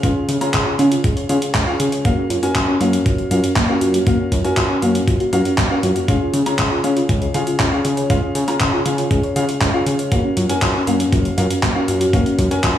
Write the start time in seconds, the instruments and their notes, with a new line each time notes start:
0.03 analog synth bass C#2, grand piano C#4 F4 G#4 F5, synth arpeggio sound C#4, kick, closed hi-hat
0.16 synth arpeggio sound F4
0.29 analog synth bass C#3, synth arpeggio sound G#4, closed hi-hat
0.41 grand piano C#4 F4 G#4 A#5, synth arpeggio sound C#5, closed hi-hat
0.54 analog synth bass C#2, synth arpeggio sound G#4, kick, clap, closed hi-hat
0.66 synth arpeggio sound F4
0.79 analog synth bass C#3, grand piano C#4 F4 G#4 F5, synth arpeggio sound C#4, closed hi-hat
0.92 synth arpeggio sound F4, closed hi-hat
1.04 analog synth bass C#2, synth arpeggio sound G#4, kick, closed hi-hat
1.17 synth arpeggio sound C#5, closed hi-hat
1.29 analog synth bass C#3, grand piano C#4 F4 G#4 F5, synth arpeggio sound G#4, closed hi-hat
1.42 synth arpeggio sound F4, closed hi-hat
1.55 analog synth bass C#2, synth arpeggio sound C#4, kick, clap, closed hi-hat
1.67 grand piano C#4 F4 G#4 F5, synth arpeggio sound F4
1.80 analog synth bass C#3, synth arpeggio sound G#4, closed hi-hat
1.92 synth arpeggio sound C#5, closed hi-hat
2.05 analog synth bass F#1, synth arpeggio sound A#3, grand piano C#4 F#4 A#4 F5, kick, closed hi-hat
2.18 synth arpeggio sound C#4
2.30 analog synth bass F#2, synth arpeggio sound F4, closed hi-hat
2.43 grand piano C#4 F#4 A#4 G#5, synth arpeggio sound F#4, closed hi-hat
2.55 analog synth bass F#1, synth arpeggio sound F4, kick, clap, closed hi-hat
2.68 synth arpeggio sound C#4
2.81 analog synth bass F#2, synth arpeggio sound A#3, grand piano C#4 F#4 A#4 F5, closed hi-hat
2.93 synth arpeggio sound C#4, closed hi-hat
3.06 analog synth bass F#1, synth arpeggio sound F4, kick, closed hi-hat
3.18 synth arpeggio sound F#4, closed hi-hat
3.31 analog synth bass F#2, grand piano C#4 F#4 A#4 F5, synth arpeggio sound F4, closed hi-hat
3.44 synth arpeggio sound C#4, closed hi-hat
3.56 analog synth bass F#1, synth arpeggio sound A#3, kick, clap, closed hi-hat
3.69 grand piano C#4 F#4 A#4 F5, synth arpeggio sound C#4
3.81 analog synth bass F#2, synth arpeggio sound F4, closed hi-hat
3.94 synth arpeggio sound F#4, closed hi-hat
4.07 analog synth bass F#1, synth arpeggio sound A#3, grand piano C#4 F#4 A#4 F5, kick, closed hi-hat
4.19 synth arpeggio sound C#4
4.32 analog synth bass F#2, synth arpeggio sound F4, kick, closed hi-hat
4.44 grand piano C#4 F#4 A#4 G#5, synth arpeggio sound F#4, closed hi-hat
4.57 analog synth bass F#1, synth arpeggio sound F4, kick, clap, closed hi-hat
4.70 synth arpeggio sound C#4
4.82 analog synth bass F#2, synth arpeggio sound A#3, grand piano C#4 F#4 A#4 F5, closed hi-hat
4.95 synth arpeggio sound C#4, closed hi-hat
5.08 analog synth bass F#1, synth arpeggio sound F4, kick, closed hi-hat
5.20 synth arpeggio sound F#4, closed hi-hat
5.33 analog synth bass F#2, grand piano C#4 F#4 A#4 F5, synth arpeggio sound F4, closed hi-hat
5.45 synth arpeggio sound C#4, closed hi-hat
5.58 analog synth bass F#1, synth arpeggio sound A#3, kick, clap, closed hi-hat
5.70 synth arpeggio sound C#4, grand piano C#4 F#4 A#4 F5
5.83 analog synth bass F#2, grand piano C#4 F#4 A#4 F5, synth arpeggio sound F4, closed hi-hat
5.96 synth arpeggio sound F#4, closed hi-hat
6.08 analog synth bass C#2, synth arpeggio sound C#4, grand piano C#4 F4 G#4 F5, kick, closed hi-hat
6.21 synth arpeggio sound F4
6.34 analog synth bass C#3, synth arpeggio sound G#4, closed hi-hat
6.46 grand piano C#4 F4 G#4 A#5, synth arpeggio sound C#5, closed hi-hat
6.59 analog synth bass C#2, synth arpeggio sound G#4, kick, clap, closed hi-hat
6.71 synth arpeggio sound F4
6.84 analog synth bass C#3, grand piano C#4 F4 G#4 F5, synth arpeggio sound C#4, closed hi-hat
6.96 synth arpeggio sound F4, closed hi-hat
7.09 analog synth bass C#2, synth arpeggio sound G#4, kick, closed hi-hat
7.22 synth arpeggio sound C#5, closed hi-hat
7.34 analog synth bass C#3, grand piano C#4 F4 G#4 F5, synth arpeggio sound G#4, closed hi-hat
7.47 synth arpeggio sound F4, closed hi-hat
7.60 analog synth bass C#2, synth arpeggio sound C#4, kick, clap, closed hi-hat
7.72 grand piano C#4 F4 G#4 F5, synth arpeggio sound F4
7.85 analog synth bass C#3, synth arpeggio sound G#4, closed hi-hat
7.97 synth arpeggio sound C#5, closed hi-hat
8.10 analog synth bass C#2, synth arpeggio sound C#4, grand piano C#4 F4 G#4 F5, kick, closed hi-hat
8.22 synth arpeggio sound F4
8.35 analog synth bass C#3, synth arpeggio sound G#4, closed hi-hat
8.48 grand piano C#4 F4 G#4 A#5, synth arpeggio sound C#5, closed hi-hat
8.60 analog synth bass C#2, synth arpeggio sound G#4, kick, clap, closed hi-hat
8.73 synth arpeggio sound F4
8.85 analog synth bass C#3, grand piano C#4 F4 G#4 F5, synth arpeggio sound C#4, closed hi-hat
8.98 synth arpeggio sound F4, closed hi-hat
9.11 analog synth bass C#2, synth arpeggio sound G#4, kick, closed hi-hat
9.23 synth arpeggio sound C#5, closed hi-hat
9.36 analog synth bass C#3, grand piano C#4 F4 G#4 F5, synth arpeggio sound G#4, closed hi-hat
9.49 synth arpeggio sound F4, closed hi-hat
9.61 analog synth bass C#2, synth arpeggio sound C#4, kick, clap, closed hi-hat
9.74 grand piano C#4 F4 G#4 F5, synth arpeggio sound F4
9.86 analog synth bass C#3, synth arpeggio sound G#4, closed hi-hat
9.99 synth arpeggio sound C#5, closed hi-hat
10.12 analog synth bass F#1, synth arpeggio sound A#3, grand piano C#4 F#4 A#4 F5, kick, closed hi-hat
10.24 synth arpeggio sound C#4
10.37 analog synth bass F#2, synth arpeggio sound F4, closed hi-hat
10.49 grand piano C#4 F#4 A#4 G#5, synth arpeggio sound F#4, closed hi-hat
10.62 analog synth bass F#1, synth arpeggio sound F4, kick, clap, closed hi-hat
10.75 synth arpeggio sound C#4
10.87 analog synth bass F#2, synth arpeggio sound A#3, grand piano C#4 F#4 A#4 F5, closed hi-hat
11.00 synth arpeggio sound C#4, closed hi-hat
11.12 analog synth bass F#1, synth arpeggio sound F4, kick, closed hi-hat
11.25 synth arpeggio sound F#4, closed hi-hat
11.38 analog synth bass F#2, grand piano C#4 F#4 A#4 F5, synth arpeggio sound F4, closed hi-hat
11.50 synth arpeggio sound C#4, closed hi-hat
11.63 analog synth bass F#1, synth arpeggio sound A#3, kick, clap, closed hi-hat
11.75 grand piano C#4 F#4 A#4 F5, synth arpeggio sound C#4
11.88 analog synth bass F#2, synth arpeggio sound F4, closed hi-hat
12.01 synth arpeggio sound F#4, closed hi-hat
12.13 analog synth bass F#1, synth arpeggio sound A#3, grand piano C#4 F#4 A#4 F5, kick, closed hi-hat
12.26 synth arpeggio sound C#4, closed hi-hat
12.38 analog synth bass F#2, synth arpeggio sound F4, kick, closed hi-hat
12.51 grand piano C#4 F#4 A#4 G#5, synth arpeggio sound F#4, closed hi-hat
12.64 analog synth bass F#1, synth arpeggio sound F4, kick, clap, closed hi-hat